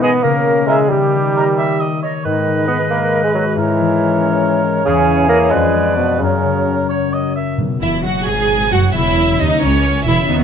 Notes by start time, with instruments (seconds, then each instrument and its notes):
Already playing: harp B2 G#3, french horn section B3
0.01 bassoon B3, harp D#4, cor anglais G#4, clarinet B4, flute D#5
0.23 french horn section C#3, harp C#3, bassoon A#3, clarinet A#4
0.46 harp A#3
0.67 bassoon G#3, harp E4 A#4, clarinet G#4, cor anglais A#4, flute E5
0.90 french horn section D#3, harp D#3, bassoon G3, clarinet G4
1.13 harp A#3
1.36 harp A#4, cor anglais A#4, flute D#5
1.58 harp D#4, cor anglais E5
1.80 cor anglais D#5, harp D#5
2.02 harp A#4, cor anglais C#5, flute D#5
2.24 harp G#2, bassoon D#3, french horn section G#3, clarinet D#4, cor anglais B4, flute D#5
2.47 harp D#3
2.68 bassoon B3, harp D#4, clarinet B4
2.90 bassoon A#3, clarinet A#4
3.13 harp G#4
3.24 bassoon G#3, clarinet G#4
3.34 bassoon F#3, clarinet F#4, harp B4
3.56 harp G#2, bassoon E3, clarinet E4, cor anglais A#4, flute C#5
3.78 harp E3
4.00 harp C#4
4.21 harp C#5
4.42 harp A#4
4.64 harp C#5
4.85 harp E2, bassoon C#3, french horn section E3, clarinet C#4, cor anglais G#4
5.08 harp G#3
5.29 bassoon A#3, harp C#4 C#5, clarinet A#4
5.51 harp F2, french horn section F3, bassoon G#3, clarinet G#4, cor anglais B4, flute D5
5.74 harp G#3
5.96 bassoon B2, clarinet B3, harp D4 B4
6.19 harp F#2, bassoon C#3, french horn section F#3, clarinet C#4, cor anglais A#4, flute C#5
6.43 harp C#3
6.66 harp C#4
6.89 harp A#4, cor anglais C#5
7.12 harp F#4, cor anglais D#5
7.35 harp A#4, cor anglais E5
7.58 timpani B2, harp B2
7.81 double bass section E1, cello section E2, harp F#3, violin section E4 E5, viola section E4
8.04 double bass section F#1, cello section F#2, harp D#4, viola section F#4, violin section F#4 F#5
8.26 double bass section G#1, cello section G#2, violin section G#4 G#5, viola section G#4, harp B4
8.49 harp D#4
8.71 double bass section F#1, cello section F#2, harp F#3, violin section F#4 F#5, viola section F#4
8.94 double bass section E1, cello section E2, harp C#3, viola section E4, violin section E4 E5
9.16 harp C#4
9.39 cello section D#2, double bass section D#2, viola section D#4, violin section D#4 D#5, harp E4
9.61 cello section C#2, double bass section C#2, viola section C#4, violin section C#4 C#5, harp A#4
9.84 harp E4
10.06 double bass section E1, cello section E2, harp C#4, viola section E4, violin section E4 E5
10.28 double bass section D#2, harp D#3, cello section D#3, viola section B3 D#4, violin section F#4 B4